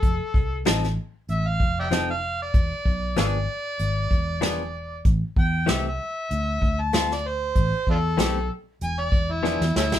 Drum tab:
HH |x---x---x---x---|x---x---x---x---|x---x---x---x---|x---x---x-------|
SD |----oo------o---|----o-------o---|----o-------oo--|----o-------oooo|
BD |o-o-------o-----|o-o-------o-----|o-o-------o-----|o-o-------o-----|